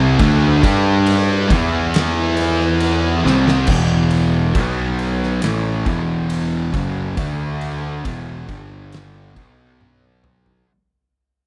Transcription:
Already playing: C2 C3 G3 C4
0.18 D2 D3 A3 D4, kick, ride
0.63 G2 G3 D4 G4, kick, ride
1.06 ride
1.50 E2 E3 B3 E4, kick, ride
1.94 snare, ride
2.37 ride
2.80 ride
3.25 C2 C3 G3 C4, snare
3.48 snare
3.67 E1 E2 B2 E3, kick, crash
4.11 ride
4.55 B1 B2 F#3 B3, kick, ride
4.99 ride
5.23 snare
5.41 A1 A2 E3 A3, snare, ride
5.86 E1 E2 B2 E3, kick, ride
6.30 ride
6.73 F#1 F#2 C#3 F#3, kick, ride
7.17 D2 D3 A3 D4, kick, ride
7.61 ride
8.05 E1 E2 B2 E3, kick, ride
8.47 G1 G2 D3 G3, kick, ride
8.92 snare, ride
9.35 B1 B2 F#3 B3, kick, ride
9.81 high tom
10.24 mid tom
10.46 floor tom

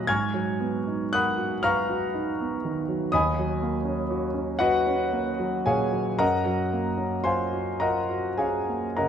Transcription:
Already playing: A#2 F#3 A#3 F4 F#4 A#4 D#5 F#5 G#5 A#5 B5 D#6 F#6 A#6
0.07 G#2 G#5 C#6 F6 G#6
0.34 F#3
0.60 B3
0.87 D#4
1.13 A#4 F#5 B5 D#6 F#6
1.38 F#4
1.63 B4 F5 A#5 C#6 F6
1.89 F#4
2.14 D#4
2.41 B3
2.65 D#3
2.89 F#3
3.12 D#2 D#5 G#5 B5 D#6
3.39 F#3
3.62 A#3
3.85 C#4
4.10 F#4
4.34 C#4
4.59 F#4 B4 D#5 F#5
4.86 C#4
5.12 A#3
5.39 F#3
5.66 A#2 G#4 C#5 F5 G#5
5.92 F#3
6.19 F#2 A#4 D#5 F#5 A#5
6.45 F#3
6.73 A#3
6.97 C#4
7.24 F4 C5 F5 G#5 C6
7.53 F#4
7.80 F4 A#4 D#5 F#5 A#5
8.10 F#4
8.38 C#4 G#4 C#5 F5 G#5
8.69 A#3
8.97 C#3 A#4 D#5 F#5 A#5

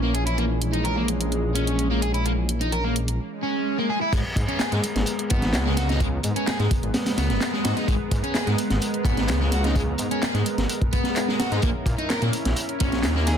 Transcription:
Already playing: A#1 E3 C#4 A#4
0.03 A#3
0.14 G#4, closed hi-hat
0.26 E4, closed hi-hat
0.38 G#3 A#3, closed hi-hat
0.62 closed hi-hat
0.73 D#4, closed hi-hat
0.85 A#4, closed hi-hat
0.97 A#3
1.08 closed hi-hat
1.21 closed hi-hat
1.32 closed hi-hat
1.55 C#4, closed hi-hat
1.67 closed hi-hat
1.79 closed hi-hat
1.91 A#3
2.02 G#4, closed hi-hat
2.14 E4, closed hi-hat
2.25 A#3, closed hi-hat
2.49 closed hi-hat
2.61 D#4, closed hi-hat
2.72 A#4, closed hi-hat
2.84 A#3
2.96 closed hi-hat
3.08 closed hi-hat
3.19 swell
3.43 C#4
3.78 A#3
3.90 G#4
4.01 E4
4.13 G#1 G#3 B3 A#4, kick, closed hi-hat, crash
4.36 G#2, kick, closed hi-hat
4.48 C#4, closed hi-hat
4.59 G#4, snare, clap, closed hi-hat
4.72 G#2 G#3, snare, closed hi-hat
4.83 closed hi-hat
4.95 G#1, snare, closed hi-hat
5.06 closed hi-hat
5.19 closed hi-hat
5.30 G#1 B3, kick, closed hi-hat
5.42 snare, closed hi-hat
5.53 C#2, snare, clap, closed hi-hat
5.66 G#3, snare
5.77 F#4, snare, closed hi-hat
5.89 D#4, snare, closed hi-hat
6.00 G#3, kick, closed hi-hat
6.23 G#2, closed hi-hat
6.36 C#4, closed hi-hat
6.47 G#4, snare, clap, closed hi-hat
6.59 G#2 G#3, snare, closed hi-hat
6.71 kick, closed hi-hat
6.83 G#1, closed hi-hat
6.94 snare, closed hi-hat
7.06 snare, closed hi-hat
7.18 C#2 B3, snare, closed hi-hat
7.30 F#1, snare, closed hi-hat
7.41 snare, clap, closed hi-hat
7.53 G#3, snare
7.64 G#2 F#4, snare, closed hi-hat
7.76 D#4, snare, closed hi-hat
7.88 G#1 G#3, kick, closed hi-hat
8.11 G#2, kick, closed hi-hat
8.23 C#4, closed hi-hat
8.34 G#4, snare, clap, closed hi-hat
8.47 G#2 G#3, snare, closed hi-hat
8.58 closed hi-hat
8.70 G#1, snare, closed hi-hat
8.82 closed hi-hat
8.94 closed hi-hat
9.05 G#1 B3, kick, closed hi-hat
9.17 snare, closed hi-hat
9.28 C#2, snare, clap, closed hi-hat
9.40 G#3, snare
9.52 F#4, snare, closed hi-hat
9.64 D#4, snare, closed hi-hat
9.75 G#3, kick, closed hi-hat
9.98 G#2, closed hi-hat
10.11 C#4, closed hi-hat
10.22 G#4, snare, clap, closed hi-hat
10.34 G#2 G#3, snare, closed hi-hat
10.46 closed hi-hat
10.58 G#1, snare, closed hi-hat
10.69 closed hi-hat
10.81 kick, closed hi-hat
10.93 B3, kick, closed hi-hat
11.04 snare, closed hi-hat
11.16 clap, closed hi-hat
11.28 G#3, snare
11.40 F#4, snare, closed hi-hat
11.51 G#2 D#4, snare, closed hi-hat
11.62 A#1 A#3 C#4 E4, kick, closed hi-hat
11.86 A#2, kick, closed hi-hat
11.98 D#4, closed hi-hat
12.10 A#4, snare, clap, closed hi-hat
12.22 A#2 A#3, snare, closed hi-hat
12.33 closed hi-hat
12.45 A#1, snare, closed hi-hat
12.56 closed hi-hat
12.69 closed hi-hat
12.80 A#1 C#4, kick, closed hi-hat
12.92 snare, closed hi-hat
13.03 D#2, snare, clap, closed hi-hat
13.16 A#3, snare
13.27 G#4, snare, closed hi-hat

